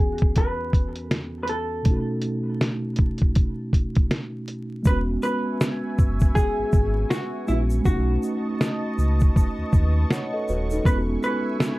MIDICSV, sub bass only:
0, 0, Header, 1, 2, 480
1, 0, Start_track
1, 0, Key_signature, 4, "major"
1, 0, Tempo, 750000
1, 1187, Time_signature, 4, 2, 24, 8
1, 7544, End_track
2, 0, Start_track
2, 0, Title_t, "Sub bass"
2, 0, Program_c, 0, 38
2, 3110, Note_on_c, 0, 28, 109
2, 3314, Note_off_c, 0, 28, 0
2, 3834, Note_on_c, 0, 30, 94
2, 4036, Note_off_c, 0, 30, 0
2, 4215, Note_on_c, 0, 32, 47
2, 4253, Note_off_c, 0, 32, 0
2, 4308, Note_on_c, 0, 32, 95
2, 4513, Note_off_c, 0, 32, 0
2, 4792, Note_on_c, 0, 34, 98
2, 4995, Note_off_c, 0, 34, 0
2, 5029, Note_on_c, 0, 35, 113
2, 5233, Note_off_c, 0, 35, 0
2, 5747, Note_on_c, 0, 37, 102
2, 5952, Note_off_c, 0, 37, 0
2, 6132, Note_on_c, 0, 39, 47
2, 6170, Note_off_c, 0, 39, 0
2, 6229, Note_on_c, 0, 39, 94
2, 6433, Note_off_c, 0, 39, 0
2, 6712, Note_on_c, 0, 27, 95
2, 6915, Note_off_c, 0, 27, 0
2, 6948, Note_on_c, 0, 28, 106
2, 7152, Note_off_c, 0, 28, 0
2, 7544, End_track
0, 0, End_of_file